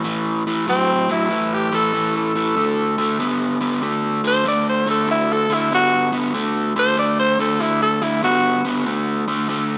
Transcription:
0.04 A2 E3
0.47 A2 E3
0.67 A2 F#3 C4
1.09 A2 F#3 E4
1.30 A2 E3
1.53 G4
1.72 A2 E3 A4
1.94 A2 E3
2.17 A4
2.35 A2 E3
2.57 D3 A3
2.98 D3 A3
3.19 D3 B3
3.61 D3 B3
3.82 D3 A3
4.24 D3 A3 C5
4.45 D3 A3 D5
4.69 C5
4.86 D3 A3
4.90 A4
5.07 D3 A3 E4
5.32 A4
5.50 D3 A3 E4
5.71 D3 B3 F#4
6.12 D3 B3
6.34 D3 A3
6.76 D3 A3 C5
6.97 D3 A3 D5
7.19 C5
7.39 D3 A3 A4
7.60 D3 A3 E4
7.82 A4
8.02 D3 A3 E4
8.23 D3 B3 F#4
8.65 D3 B3
8.86 D3 A3
9.28 D3 A3
9.49 D3 A3

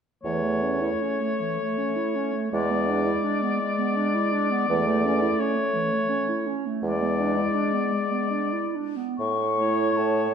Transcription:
0.23 E2 E3 A3 C#5
0.43 A3
0.63 C#4
0.82 E4
1.02 C#4
1.21 A3
1.41 E3
1.59 A3
1.78 C#4
1.96 E4
2.16 C#4
2.33 A3
2.52 E2 G#3 D5
2.70 B3
2.89 D4
3.06 E4
3.24 D4
3.42 B3
3.60 G#3
3.79 B3
3.96 D4
4.14 E4
4.33 D4
4.51 B3
4.68 E2 E3 A3
4.88 A3
5.05 C#4
5.22 E4
5.39 C#4 C#5
5.57 A3
5.74 E3
5.93 A3
6.09 C#4
6.29 E4
6.47 C#4
6.67 A3
6.82 E2 G#3 D5
7.02 B3
7.19 D4
7.38 E4
7.55 D4
7.73 B3
7.92 G#3
8.12 B3
8.30 D4
8.53 E4
8.75 D4
8.96 B3
9.18 A2 C#6
9.57 A3 E4 C#5
9.97 A2 A5

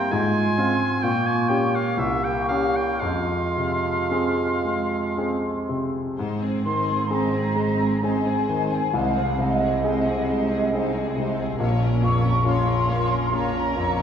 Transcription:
Already playing: G3 A#3 C4 E4 G5 C6
0.11 G#2 G#3 F4 G#5 C6
0.58 C4 F4
1.02 A#2 A#3 F4 G5 C#6
1.27 G#5
1.49 C#4 G4 G5
1.75 F5
1.97 C2 A#3 G4 E5 C#6
2.24 G5
2.48 C#4 G4 F5
2.76 G5
3.00 F2 G#3 F4 F5 C6
3.57 C3
4.11 C4 G#4
4.65 G#3
5.17 C4 G#4
5.69 C3
6.16 G#1 G#2 G#3 D#4 C5
6.40 C4 G#4
6.64 D#3 G#3 D#4 C5 C6
6.86 C4 G#4
7.08 G#3 C4 D#4 G#4 C5 A#5
7.32 C4 G#4
7.55 G#3 D#4 C5
7.79 C4 G#4
8.02 G#3 C4 D#4 G#4 C5 G#5
8.25 C4 G#4
8.48 D#3 G#3 D#4 C5
8.71 C4 G#4
8.93 C2 C3 G#3 D#4 C5 F5
9.16 C4 G#4
9.37 C3 G#3 D#4 C5 D#5
9.61 C4 G#4
9.84 G#3 C4 D#4 G#4 C5
10.07 C4 G#4
10.30 G#3 D#4 C5
10.51 C4 G#4
10.73 G#3 C4 D#4 G#4 C5
10.94 C4 G#4
11.15 C3 G#3 D#4 C5
11.36 C4 G#4
11.59 A#1 A#2 A#3 F4 C#5
11.80 C#4 A#4
12.00 F2 A#3 F4 C#6
12.05 C#5
12.22 C#4 A#4
12.43 A#3 C#4 F4 C#5 C6
12.66 C#4 A#4
12.87 A#3 F4 C#5
13.10 C#4 A#4
13.32 A#3 C#4 F4 C#5 A#5
13.54 C#4 A#4
13.76 F2 A#3 F4 C#5
13.98 C#4

